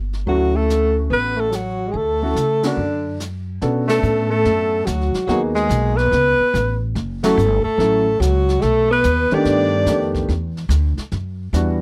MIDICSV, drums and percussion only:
0, 0, Header, 1, 2, 480
1, 0, Start_track
1, 0, Key_signature, 2, "major"
1, 0, Tempo, 417246
1, 315, Time_signature, 4, 2, 24, 8
1, 4160, Key_signature, 2, "minor"
1, 13592, End_track
2, 0, Start_track
2, 0, Title_t, "Drums"
2, 151, Note_on_c, 9, 38, 35
2, 266, Note_off_c, 9, 38, 0
2, 318, Note_on_c, 9, 25, 52
2, 804, Note_on_c, 9, 38, 55
2, 806, Note_on_c, 9, 44, 59
2, 919, Note_off_c, 9, 38, 0
2, 921, Note_off_c, 9, 44, 0
2, 1279, Note_off_c, 9, 25, 0
2, 1279, Note_on_c, 9, 25, 49
2, 1752, Note_on_c, 9, 38, 50
2, 1754, Note_on_c, 9, 44, 52
2, 1867, Note_off_c, 9, 38, 0
2, 1870, Note_off_c, 9, 44, 0
2, 2236, Note_off_c, 9, 25, 0
2, 2236, Note_on_c, 9, 25, 42
2, 2716, Note_on_c, 9, 38, 53
2, 2719, Note_on_c, 9, 44, 60
2, 2831, Note_off_c, 9, 38, 0
2, 2834, Note_off_c, 9, 44, 0
2, 3028, Note_on_c, 9, 38, 74
2, 3030, Note_on_c, 9, 51, 63
2, 3143, Note_off_c, 9, 38, 0
2, 3146, Note_off_c, 9, 51, 0
2, 3193, Note_off_c, 9, 25, 0
2, 3193, Note_on_c, 9, 25, 45
2, 3681, Note_on_c, 9, 38, 51
2, 3683, Note_on_c, 9, 44, 53
2, 3796, Note_off_c, 9, 38, 0
2, 3798, Note_off_c, 9, 44, 0
2, 4158, Note_off_c, 9, 25, 0
2, 4158, Note_on_c, 9, 25, 47
2, 4158, Note_on_c, 9, 38, 43
2, 4274, Note_off_c, 9, 38, 0
2, 4476, Note_on_c, 9, 38, 80
2, 4478, Note_on_c, 9, 51, 64
2, 4591, Note_off_c, 9, 38, 0
2, 4593, Note_off_c, 9, 51, 0
2, 4637, Note_on_c, 9, 44, 55
2, 4752, Note_off_c, 9, 44, 0
2, 5119, Note_off_c, 9, 25, 0
2, 5119, Note_on_c, 9, 25, 51
2, 5119, Note_on_c, 9, 38, 47
2, 5234, Note_off_c, 9, 38, 0
2, 5599, Note_on_c, 9, 38, 61
2, 5602, Note_on_c, 9, 44, 54
2, 5714, Note_off_c, 9, 38, 0
2, 5717, Note_off_c, 9, 44, 0
2, 5766, Note_on_c, 9, 38, 28
2, 5881, Note_off_c, 9, 38, 0
2, 5914, Note_on_c, 9, 38, 43
2, 5925, Note_off_c, 9, 38, 0
2, 5925, Note_on_c, 9, 38, 44
2, 6040, Note_off_c, 9, 38, 0
2, 6079, Note_off_c, 9, 25, 0
2, 6079, Note_on_c, 9, 25, 49
2, 6079, Note_on_c, 9, 38, 48
2, 6194, Note_off_c, 9, 38, 0
2, 6396, Note_on_c, 9, 38, 44
2, 6511, Note_off_c, 9, 38, 0
2, 6558, Note_on_c, 9, 38, 64
2, 6560, Note_on_c, 9, 44, 54
2, 6673, Note_off_c, 9, 38, 0
2, 6675, Note_off_c, 9, 44, 0
2, 6883, Note_on_c, 9, 38, 41
2, 6998, Note_off_c, 9, 38, 0
2, 7042, Note_off_c, 9, 25, 0
2, 7042, Note_on_c, 9, 25, 57
2, 7042, Note_on_c, 9, 38, 48
2, 7157, Note_off_c, 9, 38, 0
2, 7531, Note_on_c, 9, 38, 59
2, 7533, Note_on_c, 9, 44, 52
2, 7646, Note_off_c, 9, 38, 0
2, 7648, Note_off_c, 9, 44, 0
2, 8004, Note_off_c, 9, 25, 0
2, 8004, Note_on_c, 9, 25, 47
2, 8004, Note_on_c, 9, 38, 46
2, 8119, Note_off_c, 9, 38, 0
2, 8323, Note_on_c, 9, 38, 90
2, 8326, Note_on_c, 9, 51, 69
2, 8439, Note_off_c, 9, 38, 0
2, 8441, Note_off_c, 9, 51, 0
2, 8491, Note_on_c, 9, 44, 63
2, 8606, Note_off_c, 9, 44, 0
2, 8968, Note_off_c, 9, 25, 0
2, 8968, Note_on_c, 9, 25, 52
2, 8968, Note_on_c, 9, 38, 47
2, 9083, Note_off_c, 9, 38, 0
2, 9452, Note_on_c, 9, 38, 62
2, 9455, Note_on_c, 9, 44, 62
2, 9568, Note_off_c, 9, 38, 0
2, 9570, Note_off_c, 9, 44, 0
2, 9761, Note_on_c, 9, 38, 43
2, 9876, Note_off_c, 9, 38, 0
2, 9913, Note_off_c, 9, 25, 0
2, 9913, Note_on_c, 9, 25, 51
2, 9913, Note_on_c, 9, 38, 47
2, 10028, Note_off_c, 9, 38, 0
2, 10394, Note_on_c, 9, 38, 65
2, 10396, Note_on_c, 9, 44, 65
2, 10509, Note_off_c, 9, 38, 0
2, 10511, Note_off_c, 9, 44, 0
2, 10707, Note_on_c, 9, 38, 41
2, 10822, Note_off_c, 9, 38, 0
2, 10870, Note_off_c, 9, 25, 0
2, 10870, Note_on_c, 9, 25, 48
2, 10870, Note_on_c, 9, 38, 47
2, 10985, Note_off_c, 9, 38, 0
2, 11348, Note_on_c, 9, 38, 66
2, 11350, Note_on_c, 9, 44, 60
2, 11463, Note_off_c, 9, 38, 0
2, 11465, Note_off_c, 9, 44, 0
2, 11672, Note_on_c, 9, 36, 64
2, 11673, Note_on_c, 9, 38, 43
2, 11787, Note_off_c, 9, 36, 0
2, 11788, Note_off_c, 9, 38, 0
2, 11839, Note_off_c, 9, 25, 0
2, 11839, Note_on_c, 9, 25, 51
2, 11839, Note_on_c, 9, 38, 49
2, 11954, Note_off_c, 9, 38, 0
2, 12158, Note_on_c, 9, 38, 36
2, 12273, Note_off_c, 9, 38, 0
2, 12308, Note_on_c, 9, 38, 67
2, 12311, Note_on_c, 9, 44, 64
2, 12423, Note_off_c, 9, 38, 0
2, 12426, Note_off_c, 9, 44, 0
2, 12624, Note_on_c, 9, 38, 43
2, 12739, Note_off_c, 9, 38, 0
2, 12787, Note_off_c, 9, 25, 0
2, 12787, Note_on_c, 9, 25, 49
2, 12787, Note_on_c, 9, 38, 51
2, 12902, Note_off_c, 9, 38, 0
2, 13271, Note_on_c, 9, 38, 61
2, 13274, Note_on_c, 9, 44, 61
2, 13386, Note_off_c, 9, 38, 0
2, 13389, Note_off_c, 9, 44, 0
2, 13592, Note_off_c, 9, 25, 0
2, 13592, End_track
0, 0, End_of_file